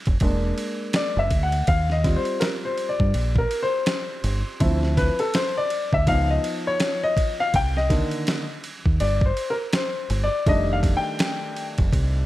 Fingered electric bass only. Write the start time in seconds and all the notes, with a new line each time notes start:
0.07 F1
0.21 E1
1.17 F#1
1.31 D2
1.68 D#2
3.00 G2
3.15 A#1
4.24 G1
4.61 D2
5.93 D2
6.07 C#2
7.54 C2
8.86 D#2
9.01 G1
10.10 G1
10.47 F1
11.79 F1
11.93 C2